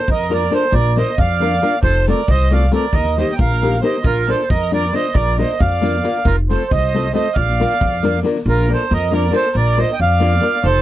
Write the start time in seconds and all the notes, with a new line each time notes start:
0.08 F2 A#4 D#5, kick
0.30 A#3 D4 F4 A#4 D5, snare
0.35 A#4
0.50 A#3 D4 F4 A4 A#4, snare
0.54 C5
0.72 A#1 A#4 D5, kick
0.96 A#3 D4 F4 A#4 C5 D#5, snare
1.18 F2 D5 F5, kick
1.40 A#3 D4 F4 A#4, snare
1.62 A#3 D4 F4 A#4, snare
1.83 F1 A4 C5, kick
2.07 A3 C4 F4 A4 A#4 D5, snare
2.28 C2 C5 D#5, kick
2.51 A3 C4 F4 A4 D5 F5, snare
2.72 A3 C4 F4 A4 A#4 D5, snare
2.93 D#2 A#4 D#5, kick
3.05 snare
3.17 A#3 D#4 G4 A#4 C5 D#5, snare
3.28 D#5, snare
3.33 G5
3.38 A#1 A#4 F5, kick
3.51 snare
3.62 A#3 D#4 G4 A#4, snare
3.73 snare
3.82 A#3 D#4 G4 A#4 C5 D#5, snare
4.04 A#1 F4 A#4, kick
4.28 A#3 D4 F4 A4 A#4 C5, snare
4.50 F2 A#4 D#5, kick
4.71 A#3 D4 F4 A#4 D5, snare
4.93 A#3 D4 F4 A#4 C5 D#5, snare
5.14 A#1 A#4 D5, kick
5.38 A#3 D4 F4 A#4 C5 D#5, snare
5.60 F2 D5 F5, kick
5.82 A#3 D4 F4 A#4, snare
6.03 A#3 D4 F4 A#4, snare
6.25 F1 F4 A#4, kick
6.49 A3 C4 F4 A4 C5, snare
6.71 C2 C5 D#5, kick
6.94 A3 C4 F4 A4, snare
7.13 A3 C4 F4 A4 C5 D#5, snare
7.34 A#1 D5 F5, kick
7.48 snare
7.60 A#3 D4 F4 A#4, snare
7.71 snare
7.81 F2, kick
7.92 snare
8.03 A#3 D4 F4 A#4, snare
8.15 snare
8.23 A#3 D4 F4 A#4, snare
8.36 snare
8.46 A#1 F4 A#4
8.68 A#3 D4 F4 A#4
8.74 A4 C5
8.91 F2 A#4 D#5
9.11 A#3 D4 F4 A#4
9.16 D5
9.31 A#3 D4 F4 A#4
9.35 A4 C5
9.55 A#1 A#4 D5
9.77 A#3 D4 F4 A#4 C5
9.81 D#5
9.93 D#5 G5
10.00 F2 D5 F5
10.20 A#3 D4 F4 A#4
10.41 A#3 D4 F4 A#4
10.64 F1 A4 C5